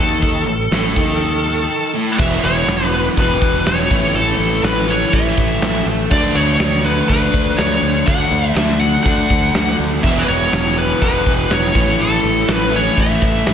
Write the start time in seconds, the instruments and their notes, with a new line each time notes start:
Already playing: fingered electric bass D#2, overdriven electric guitar D#3, lead electric guitar A4
0.22 kick, open hi-hat
0.47 fingered electric bass A1, overdriven electric guitar A2
0.71 fingered electric bass A1, overdriven electric guitar A2, snare, open hi-hat
0.96 fingered electric bass D#2, overdriven electric guitar D#3, kick
1.21 open hi-hat
1.95 overdriven electric guitar A2
2.18 fingered electric bass E1, overdriven electric guitar E2 B2 E3, lead electric guitar E5, kick, crash
2.43 fingered electric bass E1, lead electric guitar C#5
2.67 fingered electric bass E1, snare, open hi-hat
2.94 lead electric guitar B4
3.16 fingered electric bass E1, overdriven electric guitar E2 B2 E3, lead electric guitar B4, kick, open hi-hat
3.42 fingered electric bass E1, kick
3.66 fingered electric bass E1, lead electric guitar C#5, snare, open hi-hat
3.90 fingered electric bass A1, overdriven electric guitar A2 E3 A3, kick
4.14 fingered electric bass A1, lead electric guitar A4, open hi-hat
4.38 fingered electric bass A1
4.63 fingered electric bass A1, lead electric guitar B4, snare, open hi-hat
4.87 overdriven electric guitar A2 E3 A3, lead electric guitar C#5
5.13 fingered electric bass A1, lead electric guitar E5, kick, open hi-hat
5.38 fingered electric bass A1, kick
5.62 fingered electric bass A1, snare, open hi-hat
5.86 fingered electric bass A1
6.10 fingered electric bass D2, overdriven electric guitar D3 A3 D4, lead electric guitar D5, kick, crash
6.35 fingered electric bass D2, lead electric guitar C#5
6.60 fingered electric bass D2, snare, open hi-hat
6.85 lead electric guitar B4
7.09 fingered electric bass D2, overdriven electric guitar D3 A3 D4, lead electric guitar B4, kick, open hi-hat
7.34 fingered electric bass D2, kick
7.57 fingered electric bass D2, lead electric guitar C#5, snare, open hi-hat
7.82 fingered electric bass D2
8.06 fingered electric bass D2, overdriven electric guitar D3 A3 D4, lead electric guitar F#5, kick, open hi-hat
8.31 fingered electric bass D2
8.55 fingered electric bass D2, lead electric guitar E5, snare, open hi-hat
8.80 lead electric guitar F#5
9.03 fingered electric bass D2, overdriven electric guitar D3 A3 D4, lead electric guitar F#5, kick, open hi-hat
9.30 fingered electric bass D2, kick
9.54 fingered electric bass D2, snare, open hi-hat
9.79 fingered electric bass D2
10.02 fingered electric bass E1, overdriven electric guitar E2 B2 E3, lead electric guitar E5, kick, crash
10.19 lead electric guitar B4
10.28 fingered electric bass E1, lead electric guitar C#5
10.53 fingered electric bass E1, snare, open hi-hat
10.78 lead electric guitar B4
11.00 fingered electric bass E1, overdriven electric guitar E2 B2 E3, lead electric guitar B4, kick, open hi-hat
11.26 fingered electric bass E1, kick
11.50 fingered electric bass E1, lead electric guitar C#5, snare, open hi-hat
11.73 fingered electric bass A1, overdriven electric guitar A2 E3 A3, kick
11.99 fingered electric bass A1, lead electric guitar A4, open hi-hat
12.24 fingered electric bass A1
12.48 fingered electric bass A1, lead electric guitar B4, snare, open hi-hat
12.71 overdriven electric guitar A2 E3 A3
12.76 lead electric guitar C#5
12.97 fingered electric bass A1, lead electric guitar E5, kick, open hi-hat
13.22 fingered electric bass A1, kick
13.47 fingered electric bass A1, snare, open hi-hat